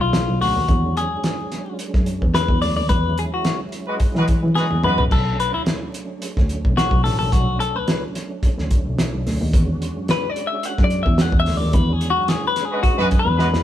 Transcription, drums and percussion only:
0.13 snare, closed hi-hat
0.42 snare, open hi-hat
0.68 kick, closed hi-hat
0.97 closed hi-hat
1.24 snare, closed hi-hat
1.52 snare, closed hi-hat
1.79 closed hi-hat
1.94 kick, snare
2.06 closed hi-hat
2.22 kick
2.34 snare, closed hi-hat
2.48 kick
2.62 snare, open hi-hat
2.89 kick, closed hi-hat
3.18 closed hi-hat
3.45 snare, closed hi-hat
3.72 closed hi-hat
4.00 kick, closed hi-hat
4.15 snare
4.28 kick, closed hi-hat
4.56 snare
4.71 high tom
4.83 mid tom
4.98 floor tom
5.11 kick, crash
5.40 closed hi-hat
5.66 snare, closed hi-hat
5.94 closed hi-hat
6.22 closed hi-hat
6.37 kick, snare
6.49 closed hi-hat
6.65 kick
6.78 snare, closed hi-hat
6.91 kick
7.05 snare, open hi-hat
7.32 kick, closed hi-hat
7.60 closed hi-hat
7.88 snare, closed hi-hat
8.15 snare, closed hi-hat
8.43 kick, closed hi-hat
8.59 snare
8.71 kick, closed hi-hat
8.99 snare, closed hi-hat
9.27 snare, open hi-hat
9.53 kick, closed hi-hat
9.82 closed hi-hat
10.08 snare, closed hi-hat
10.36 closed hi-hat
10.63 closed hi-hat
10.78 kick, snare
10.90 closed hi-hat
11.06 kick
11.18 snare, closed hi-hat
11.32 kick
11.46 snare, open hi-hat
11.73 kick, closed hi-hat
12.01 closed hi-hat
12.28 snare, closed hi-hat
12.56 snare, closed hi-hat
12.83 kick, closed hi-hat
12.99 snare
13.11 kick, closed hi-hat
13.39 snare
13.54 snare

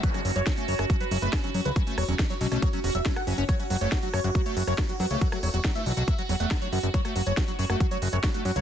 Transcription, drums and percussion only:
0.03 kick, closed hi-hat
0.14 cross-stick, closed hi-hat
0.25 open hi-hat
0.36 closed hi-hat
0.47 kick, snare, closed hi-hat
0.57 closed hi-hat
0.68 open hi-hat
0.79 cross-stick, closed hi-hat
0.90 kick, closed hi-hat
1.01 closed hi-hat
1.11 open hi-hat
1.22 closed hi-hat
1.33 kick, cross-stick, snare, closed hi-hat
1.44 closed hi-hat
1.54 open hi-hat
1.65 closed hi-hat
1.76 kick, closed hi-hat
1.87 closed hi-hat
1.98 cross-stick, open hi-hat
2.08 closed hi-hat
2.19 kick, snare, closed hi-hat
2.30 closed hi-hat
2.41 open hi-hat
2.52 cross-stick, closed hi-hat
2.62 kick, closed hi-hat
2.73 closed hi-hat
2.84 open hi-hat
2.95 closed hi-hat
3.06 kick, snare, closed hi-hat
3.16 cross-stick, closed hi-hat
3.27 open hi-hat
3.38 closed hi-hat
3.49 kick, cross-stick, closed hi-hat
3.60 closed hi-hat
3.70 open hi-hat
3.81 closed hi-hat
3.92 kick, snare, closed hi-hat
4.03 closed hi-hat
4.14 cross-stick, open hi-hat
4.24 closed hi-hat
4.35 kick, closed hi-hat
4.46 closed hi-hat
4.57 open hi-hat
4.67 cross-stick, closed hi-hat
4.78 kick, snare, closed hi-hat
4.89 closed hi-hat
5.00 open hi-hat
5.11 closed hi-hat
5.21 kick, closed hi-hat
5.32 cross-stick, closed hi-hat
5.43 open hi-hat
5.54 closed hi-hat
5.65 kick, snare, closed hi-hat
5.75 closed hi-hat
5.86 open hi-hat
5.97 closed hi-hat
6.08 kick, closed hi-hat
6.19 closed hi-hat
6.29 open hi-hat
6.40 closed hi-hat
6.51 kick, cross-stick, snare, closed hi-hat
6.62 closed hi-hat
6.73 open hi-hat
6.83 closed hi-hat
6.94 kick, closed hi-hat
7.05 cross-stick, closed hi-hat
7.16 open hi-hat
7.26 closed hi-hat
7.37 kick, snare, closed hi-hat
7.48 closed hi-hat
7.59 open hi-hat
7.70 cross-stick, closed hi-hat
7.80 kick, closed hi-hat
7.91 closed hi-hat
8.02 open hi-hat
8.13 closed hi-hat
8.24 kick, cross-stick, snare, closed hi-hat
8.34 closed hi-hat
8.45 open hi-hat
8.56 closed hi-hat

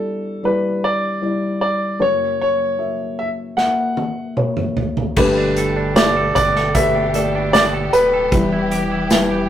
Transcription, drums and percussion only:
3.58 snare
3.97 high tom
4.37 mid tom
4.57 mid tom
4.77 floor tom
4.97 floor tom
5.16 kick, crash
5.56 closed hi-hat
5.96 snare, closed hi-hat, tambourine
6.36 kick, closed hi-hat
6.56 snare
6.75 kick, closed hi-hat
7.14 closed hi-hat
7.54 snare, closed hi-hat, tambourine
7.93 closed hi-hat
8.32 kick, closed hi-hat
8.71 closed hi-hat
9.10 snare, closed hi-hat, tambourine

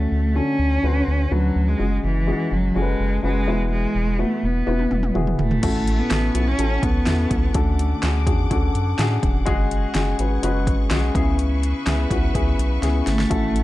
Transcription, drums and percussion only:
4.67 high tom
4.79 high tom
4.91 mid tom
5.03 mid tom
5.15 mid tom
5.27 mid tom
5.39 floor tom
5.51 floor tom
5.63 kick, closed hi-hat, crash
5.88 closed hi-hat
6.11 snare, clap, closed hi-hat
6.35 closed hi-hat
6.59 closed hi-hat
6.83 kick, closed hi-hat
7.07 snare, clap, closed hi-hat
7.31 kick, closed hi-hat
7.54 kick, closed hi-hat
7.79 closed hi-hat
8.03 snare, clap, closed hi-hat
8.27 kick, closed hi-hat
8.51 kick, closed hi-hat
8.75 closed hi-hat
8.99 snare, clap, closed hi-hat
9.23 kick, closed hi-hat
9.46 kick, closed hi-hat
9.71 closed hi-hat
9.95 snare, clap, closed hi-hat
10.19 closed hi-hat
10.43 closed hi-hat
10.67 kick, closed hi-hat
10.91 snare, clap, closed hi-hat
11.15 kick, closed hi-hat
11.39 closed hi-hat
11.63 closed hi-hat
11.87 snare, clap, closed hi-hat
12.11 kick, closed hi-hat
12.35 kick, closed hi-hat
12.59 closed hi-hat
12.83 snare, closed hi-hat
13.07 snare, closed hi-hat
13.19 snare
13.31 kick, closed hi-hat
13.56 closed hi-hat

